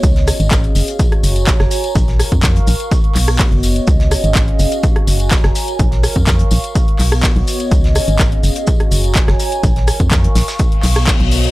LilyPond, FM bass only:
\new Staff \with { instrumentName = "FM bass" } { \clef bass \time 4/4 \key bes \minor \tempo 4 = 125 des,8 r16 aes,,8 r16 ges,,16 r8. ges,,8 r16 ges,,16 r8 | bes,,8 r16 f,8 r16 bes,,16 r8. ces,8 r16 ges,,8 r16 | des,8 r16 aes,,8 r16 ges,,16 r8. ges,,8 r16 ges,,16 r8 | bes,,8 r16 f,8 r16 bes,,16 r8. ces,8 r16 ces,16 r8 |
des,8 r16 aes,,8 r16 ges,,16 r8. ges,,8 r16 ges,,16 r8 | bes,,8 r16 f,8 r16 bes,,16 r8. ces,8 r16 ces,8 r16 | }